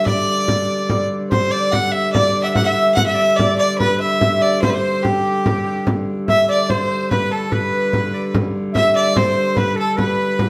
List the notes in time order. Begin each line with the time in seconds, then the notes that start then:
Already playing: G2 D3
0.06 D5, frame drum
0.27 frame drum
0.48 frame drum
0.90 D5, frame drum
1.30 G2 D3 C5, frame drum
1.51 D5
1.72 F#5, frame drum
1.92 E5
2.12 D5, frame drum
2.43 E5 F#5
2.53 F#5, frame drum
2.64 E5
2.77 frame drum
2.94 F#5, frame drum
3.06 E5
3.15 D5
3.21 E5
3.36 D5, frame drum
3.58 D5
3.78 B4, frame drum
4.00 E5, frame drum
4.21 E5, frame drum
4.41 D5
4.62 C5, frame drum
4.70 B4
4.74 C5
5.03 G4, frame drum
5.46 frame drum
5.87 frame drum
6.27 G2 D3 E5, frame drum
6.48 D5
6.69 C5, frame drum
6.90 C5
7.11 B4, frame drum
7.31 A4
7.51 B4, frame drum
7.73 frame drum
7.93 frame drum
8.13 D5
8.34 frame drum
8.74 E5, frame drum
8.95 D5, frame drum
9.15 C5, frame drum
9.35 C5
9.55 B4, frame drum
9.75 A4
9.97 B4, frame drum
10.39 frame drum